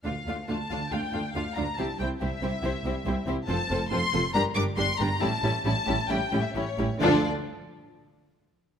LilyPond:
<<
  \new Staff \with { instrumentName = "Violin section" } { \time 4/4 \key d \minor \tempo 4 = 138 f''4 a''4 g''4 f''8 bes''8 | a''8 g''8 e''2~ e''8 r8 | a''4 c'''4 bes''8 d'''8 c'''8 bes''8 | a''4 a''4 g''8. e''16 cis''4 |
d''8 r2. r8 | }
  \new Staff \with { instrumentName = "Violin section" } { \time 4/4 \key d \minor <f' f''>8 <f' f''>8 <f' f''>8 <f' f''>8 <f' f''>8 <f' f''>8 <f' f''>8 <f' f''>8 | <g' c''>8 <g' c''>8 <g' c''>8 <g' c''>8 <g' c''>8 <g' c''>8 <g' c''>8 <g' c''>8 | <a' c''>8 <a' c''>8 <a' c''>8 <a' c''>8 <g' bes'>8 <g' bes'>8 <g' bes'>8 <g' bes'>8 | <e' g'>8 <e' g'>8 <e' g'>8 <e' g'>8 <e' g'>8 <e' g'>8 <e' g'>8 <e' g'>8 |
<f' a'>8 r2. r8 | }
  \new Staff \with { instrumentName = "Viola section" } { \time 4/4 \key d \minor <a d'>8 <a d'>8 <a d'>8 <a d'>8 <a d'>8 <a d'>8 <a d'>8 <a d'>8 | <c' e'>8 <c' e'>8 <c' e'>8 <c' e'>8 <c' e'>8 <c' e'>8 <c' e'>8 <c' e'>8 | <c' f'>8 <c' f'>8 <c' f'>8 <c' f'>8 <g d'>8 <g d'>8 <g d'>8 <g d'>8 | <g cis'>8 <g cis'>8 <g cis'>8 <g cis'>8 <g cis'>8 <g cis'>8 <g cis'>8 <g cis'>8 |
<f d'>8 r2. r8 | }
  \new Staff \with { instrumentName = "Cello section" } { \clef bass \time 4/4 \key d \minor d,8 d,8 d,8 d,8 d,8 d,8 d,8 d,8 | c,8 c,8 c,8 c,8 c,8 c,8 c,8 c,8 | f,8 f,8 f,8 f,8 g,8 g,8 g,8 g,8 | a,8 a,8 a,8 a,8 a,8 a,8 a,8 a,8 |
d8 r2. r8 | }
  \new Staff \with { instrumentName = "Double bass section" } { \clef bass \time 4/4 \key d \minor d,8 d,8 d,8 d,8 d,8 d,8 d,8 d,8 | c,8 c,8 c,8 c,8 c,8 c,8 c,8 c,8 | f,,8 f,,8 f,,8 f,,8 g,,8 g,,8 g,,8 g,,8 | a,,8 a,,8 a,,8 a,,8 a,,8 a,,8 a,,8 a,,8 |
d,8 r2. r8 | }
>>